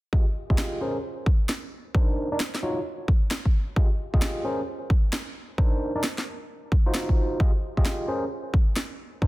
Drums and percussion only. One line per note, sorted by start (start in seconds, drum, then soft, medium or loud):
0.13 kick loud
0.50 kick medium
0.58 snare loud
1.26 kick loud
1.49 snare loud
1.95 kick loud
2.40 snare loud
2.55 snare medium
3.08 kick loud
3.31 snare loud
3.46 kick medium
3.76 kick loud
4.14 kick medium
4.22 snare loud
4.90 kick loud
5.13 snare loud
5.58 kick loud
6.04 snare loud
6.18 snare medium
6.72 kick loud
6.94 snare loud
7.09 kick medium
7.40 kick loud
7.77 kick medium
7.85 snare loud
8.54 kick loud
8.76 snare loud
9.22 kick loud